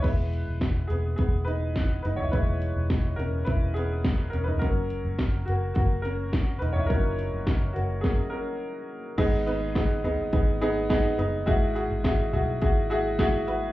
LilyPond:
<<
  \new Staff \with { instrumentName = "Upright piano" } { \time 4/4 \key e \lydian \tempo 4 = 105 <e' b'>4. <b gis'>8 <b gis'>8 <dis' b'>4 <dis' b'>16 <e' cis''>16 | <e' b'>4. <cis' ais'>8 <e' b'>8 <b gis'>4 <cis' ais'>16 <dis' b'>16 | ais'4. <ais fis'>8 <ais fis'>8 <cis' ais'>4 <dis' b'>16 <e' cis''>16 | ais'4. <ais fis'>8 gis'8 <cis' ais'>4 r8 |
<b dis' gis'>8 <b dis' b'>8 <b dis' gis'>8 <b dis' gis'>8 <b dis' gis'>8 <b dis' gis'>8 <b dis' gis'>8 <b dis' gis'>8 | <e' fis' gis'>8 <e' fis' gis'>8 <e' fis' gis'>8 <e' fis' gis'>8 <e' fis' gis'>8 <e' fis' gis'>8 <e' fis' gis'>8 <e' fis' b'>8 | }
  \new Staff \with { instrumentName = "Upright piano" } { \clef bass \time 4/4 \key e \lydian <e gis b>8 r2. r8 | <e gis b>8 r2. r8 | <fis ais cis'>8 r2. r8 | <fis ais cis'>4. r8 <fis ais cis'>8 r4. |
gis,4. r2 r8 | gis,4. r2 r8 | }
  \new Staff \with { instrumentName = "Fingered electric bass" } { \clef bass \time 4/4 \key e \lydian e,,8. e,,8. e,,8 e,,4. fis,,8 | e,,8. e,,8. e,,8 e,,4. e,,8 | fis,,8. fis,,8. fis,,8 fis,,4. e,,8 | fis,,8. fis,,8. fis,,8 r2 |
gis,,2 gis,,4. fis,,8 | gis,,8. gis,,8. b,,8 gis,,2 | }
  \new DrumStaff \with { instrumentName = "Drums" } \drummode { \time 4/4 <cymc hh bd>8 hh8 <hh bd sn>8 hh8 <hh bd>8 hh8 <hh bd sn>8 hh16 tomfh16 | <hh bd>8 hh8 <hh bd sn>8 hh8 <hh bd>8 hh8 <hh bd sn>8 hh16 tomfh16 | <hh bd>8 hh8 <hh bd sn>8 hh8 <hh bd>8 hh8 <hh bd sn>8 hh16 tomfh16 | <hh bd>8 hh8 <hh bd sn>8 hh8 <bd sn>4 r4 |
<cymc hh bd>8 hh8 <hh bd sn>8 <hh tomfh>8 <hh bd>8 hh8 <hh bd sn>8 hh8 | <hh bd>8 hh8 <hh bd sn>8 <hh tomfh>8 <hh bd>8 hh8 <hh bd sn>8 hh8 | }
>>